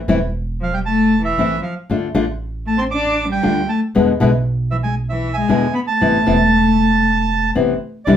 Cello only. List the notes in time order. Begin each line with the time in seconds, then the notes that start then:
0.60 F3
0.73 G3
0.85 A3
1.22 E3
1.61 F3
2.66 A3
2.78 C4
2.93 D4
3.29 G3
3.68 A3
4.71 E3
4.83 G#3
5.10 E3
5.36 G#3
5.73 B3
5.87 A3
8.07 D3